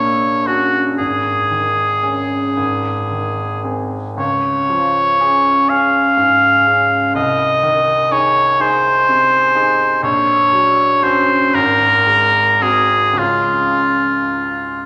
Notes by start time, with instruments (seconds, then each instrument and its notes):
Already playing: grand piano A#1 A#3, oboe C#5
0.47 grand piano C#4 F#4, oboe F#4
0.98 grand piano G#1, oboe G#4
1.51 grand piano D#3
2.03 grand piano C#4 G#4
2.57 grand piano G#1
3.11 grand piano D#3
3.64 grand piano C4 G#4
4.17 grand piano C#2, oboe C#5
4.70 grand piano F3
5.20 grand piano C#4 G#4
5.69 grand piano C#4 G#4, oboe F5
6.17 grand piano G#2
6.67 grand piano C#4 G#4
7.14 grand piano C2, oboe D#5
7.63 grand piano D#3
8.11 grand piano D#4 G#4, oboe C#5
8.60 grand piano D#4 G#4, oboe C5
9.09 grand piano C3
9.55 grand piano D#4 G#4
10.03 grand piano A#1, oboe C#5
10.53 grand piano F#3
11.03 grand piano C#4 F#4, oboe C5
11.54 grand piano G#1, oboe A#4
12.06 grand piano G#3
12.61 grand piano C4 F#4, oboe G#4
13.13 grand piano C#2 G#3 C#4 F4
13.18 oboe F4